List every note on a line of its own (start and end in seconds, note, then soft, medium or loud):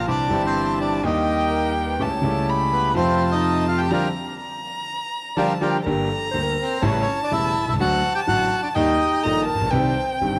0.07 0.28 C2 soft
0.07 0.28 C3 soft
0.07 0.27 E3 soft
0.07 0.28 G3 soft
0.07 0.28 C4 medium
0.07 0.28 C4 soft
0.07 0.42 D4 medium
0.07 0.27 E4 medium
0.07 0.28 G4 medium
0.07 0.28 G4 soft
0.07 0.42 D5 medium
0.07 1.06 A5 medium
0.28 0.99 G1 medium
0.28 0.99 G2 medium
0.28 0.98 E3 medium
0.28 0.99 G3 medium
0.28 1.00 C4 medium
0.28 1.00 E4 medium
0.28 1.00 G4 medium
0.33 1.01 G4 medium
0.46 0.78 C4 medium
0.46 0.78 C5 medium
0.80 1.02 D4 medium
0.80 1.03 D5 medium
1.02 1.94 D#2 medium
1.02 1.95 D#3 medium
1.02 1.94 G3 medium
1.02 1.95 A#3 medium
1.02 1.95 D#4 medium
1.02 1.72 D#4 medium
1.02 1.95 G4 medium
1.02 2.03 G5 medium
1.06 1.96 G4 medium
1.06 1.73 D#5 medium
1.50 1.88 A#4 medium
1.87 2.12 B4 medium
1.99 2.20 C#2 medium
1.99 2.19 C#3 medium
1.99 2.20 C#3 medium
1.99 2.20 G3 soft
1.99 2.20 A3 medium
1.99 2.20 A3 soft
1.99 2.20 C#4 soft
1.99 2.20 E4 soft
1.99 2.20 G4 medium
1.99 2.51 A5 medium
2.10 2.59 C#5 medium
2.22 2.92 C#2 medium
2.22 2.92 C#3 medium
2.22 2.91 G3 medium
2.22 2.92 A3 medium
2.22 2.92 C#4 medium
2.22 2.92 E4 medium
2.22 2.92 G4 medium
2.50 2.96 B5 medium
2.73 2.95 B3 medium
2.73 2.94 B4 medium
2.94 3.87 F2 medium
2.94 3.86 C3 medium
2.94 3.87 F3 medium
2.94 3.87 A3 medium
2.94 3.87 C4 medium
2.94 3.30 C4 medium
2.94 3.87 F4 loud
2.94 3.88 F4 medium
2.94 3.33 C5 medium
2.94 3.93 A5 medium
3.32 3.67 D#4 medium
3.32 3.65 D#5 medium
3.68 3.80 F4 medium
3.68 3.79 F5 medium
3.78 3.92 G4 medium
3.78 3.90 G5 medium
3.91 4.06 D3 medium
3.91 4.07 F3 medium
3.91 4.07 G3 medium
3.91 4.07 A#3 medium
3.91 4.06 D4 medium
3.91 4.08 F4 medium
3.91 4.08 G4 medium
3.91 4.08 A#4 medium
3.91 4.03 D5 medium
3.91 4.39 A#5 medium
4.40 5.38 A#5 medium
5.36 5.52 D3 medium
5.36 5.53 F3 medium
5.36 5.53 G3 medium
5.36 5.52 A#3 medium
5.36 5.53 D4 medium
5.36 5.53 F4 medium
5.36 5.53 G4 medium
5.36 5.53 A#4 medium
5.36 5.48 D5 medium
5.36 5.64 A5 medium
5.61 5.77 D3 medium
5.61 5.77 F3 medium
5.61 5.77 G3 medium
5.61 5.78 A#3 medium
5.61 5.78 D4 medium
5.61 5.77 F4 medium
5.61 5.77 G4 medium
5.61 5.77 A#4 medium
5.61 5.73 D5 medium
5.61 5.84 G5 medium
5.84 6.06 G1 medium
5.84 6.06 G2 medium
5.84 6.06 D3 medium
5.84 6.06 G3 medium
5.84 6.06 A#3 medium
5.84 6.06 G4 medium
5.84 6.10 A#4 medium
5.84 6.83 A#5 loud
6.08 6.30 A4 medium
6.31 6.54 D2 medium
6.31 6.54 D3 medium
6.31 6.54 G3 soft
6.31 6.55 A#3 soft
6.31 6.54 G4 medium
6.31 6.44 C5 medium
6.43 6.81 A#4 medium
6.62 6.83 C4 medium
6.62 6.86 C5 medium
6.79 7.03 A1 medium
6.79 7.03 A2 medium
6.79 7.03 C#3 medium
6.79 7.03 G3 medium
6.79 7.03 A3 medium
6.79 7.03 E4 medium
6.79 7.17 C#5 medium
6.79 7.78 A5 medium
6.86 6.91 C#4 medium
6.86 6.92 C#5 medium
6.92 6.98 B4 medium
7.01 7.20 C#4 medium
7.01 7.21 C#5 medium
7.23 7.32 D4 medium
7.23 7.33 D5 medium
7.31 7.52 E1 medium
7.31 7.52 E2 medium
7.31 7.51 C#3 soft
7.31 7.52 G3 soft
7.31 7.52 A3 soft
7.31 7.65 E4 medium
7.31 7.52 E4 medium
7.31 7.68 E5 medium
7.62 7.68 B1 soft
7.68 7.74 C2 medium
7.68 7.73 E4 medium
7.68 7.75 E5 medium
7.74 7.79 C#2 medium
7.79 8.00 D2 medium
7.79 8.00 D3 medium
7.79 8.00 F#3 medium
7.79 8.00 A3 medium
7.79 8.00 F#4 medium
7.79 8.13 F#4 medium
7.79 8.13 F#5 loud
7.79 8.76 A5 loud
8.15 8.21 G4 medium
8.15 8.20 G5 medium
8.27 8.48 A1 medium
8.27 8.47 A2 medium
8.27 8.47 D3 medium
8.27 8.47 F#3 soft
8.27 8.48 A3 soft
8.27 8.48 F#4 medium
8.27 8.61 F#4 medium
8.27 8.61 F#5 loud
8.63 8.68 D4 medium
8.63 8.68 D5 medium
8.75 8.96 D#2 medium
8.75 8.96 D#3 medium
8.75 8.96 G3 medium
8.75 8.96 A#3 medium
8.75 9.44 D#4 medium
8.75 8.96 G4 medium
8.75 9.43 D#5 medium
8.75 9.25 G5 medium
8.98 9.24 G4 medium
9.23 9.44 A#1 medium
9.23 9.44 A#2 medium
9.23 9.44 D#3 medium
9.23 9.44 G3 soft
9.23 9.44 A#3 soft
9.23 9.44 G4 medium
9.23 9.45 A4 medium
9.23 9.45 A#5 medium
9.45 9.68 A#4 medium
9.45 9.72 A5 loud
9.55 9.60 A1 medium
9.61 9.66 A#1 medium
9.67 9.72 B1 medium
9.71 9.92 C2 medium
9.71 9.92 C3 medium
9.71 9.92 D#3 medium
9.71 9.92 G3 medium
9.71 9.92 C4 medium
9.71 9.92 G4 medium
9.71 10.27 C5 loud
9.71 10.39 G5 loud
10.21 10.39 G1 medium
10.21 10.39 G2 medium
10.21 10.39 D#3 medium
10.21 10.39 G3 soft
10.21 10.39 C4 medium
10.21 10.39 G4 medium